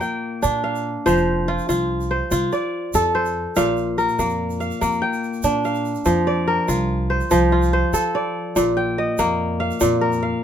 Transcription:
Already playing: A#2 A#3 A#4 F5
0.01 G5, shaker
0.42 A#2 D4, shaker
0.64 F5
0.75 shaker
1.06 F1 F3 C5, shaker
1.17 shaker
1.48 F4
1.58 shaker
1.69 C2 F4, shaker
2.01 shaker
2.11 C5
2.31 C2 F4, shaker
2.52 D5, shaker
2.94 F2 A4, shaker
3.15 C5
3.25 shaker
3.56 A#1 A#2 F5, shaker
3.77 shaker
3.98 A#4, shaker
4.09 shaker
4.19 F2 A#3, shaker
4.29 shaker
4.50 shaker
4.60 F5, shaker
4.71 shaker
4.81 F2 A#3, shaker
5.02 G5
5.13 shaker
5.23 shaker
5.33 shaker
5.43 A#2 D4, shaker
5.64 F5, shaker
5.75 shaker
5.85 shaker
5.95 shaker
6.05 F2 F3, shaker
6.27 D5
6.47 A#4
6.68 C2 F4, shaker
7.10 C5
7.20 shaker
7.31 C2 F3, shaker
7.52 F4
7.62 shaker
7.73 C5
7.93 F3 A4, shaker
8.15 D5
8.56 A#1 A#2, shaker
8.77 G5
8.98 D#5
9.18 F2 A#3, shaker
9.60 F5
9.71 shaker
9.80 F2 A#2, shaker
10.01 A#4
10.12 shaker
10.23 F5

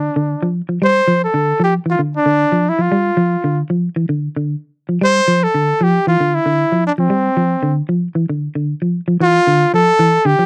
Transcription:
Already playing: D4
0.16 D3
0.43 F3
0.69 F3
0.82 G3 C5
1.08 F3
1.24 A4
1.34 D3
1.60 F3 G4
1.86 E3
1.90 F4
1.99 D3
2.17 D4
2.26 D3
2.52 F3
2.69 E4
2.79 F3 F4
2.92 G3
3.17 F3
3.44 D3
3.70 F3
3.96 E3
4.09 D3
4.36 D3
4.89 F3
5.01 G3 C5
5.28 F3
5.43 A4
5.54 D3
5.81 F3 G4
6.07 E3 F4
6.20 D3
6.34 E4
6.46 D3
6.72 F3
6.87 D4
6.98 F3 C4
7.10 G3
7.37 F3
7.63 D3
7.89 F3
8.15 E3
8.29 D3
8.55 D3
8.82 F3
9.08 F3
9.20 E3 F4
9.47 D3
9.74 F3 A4
9.99 E3
10.25 D3 G4
10.39 F3

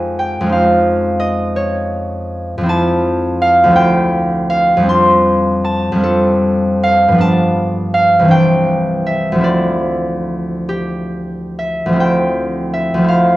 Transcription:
Already playing: F2 G#3 A#3 C4 D#4 F4 G4 A#4 C5 G5 G#5 A#5
0.19 G5
0.41 F2 G#3
0.46 C#4 D#4
0.53 F5
1.20 D#5
1.56 C#5
2.58 F2 F3
2.63 C4 E4
2.69 A5
3.42 F5
3.64 D2 F3
3.70 C4 E4
3.76 G5
4.50 F5
4.76 F2 G3
4.83 C4 D4
4.89 C6
5.64 A5
5.92 F2 G3
5.98 C4 D4
6.03 A4
6.84 F5
7.08 G2 F3
7.15 B3 D4
7.21 A5
7.94 F5
8.19 C2 E3
8.24 C4 D4
8.31 G5
9.06 E5
9.32 D2 F3
9.38 C4 E4
9.44 D5
10.69 G4
11.59 E5
11.86 D2 F3
11.92 C4 E4
12.00 G5
12.73 E5
12.94 D2 F3
13.01 C4 E4
13.08 F5

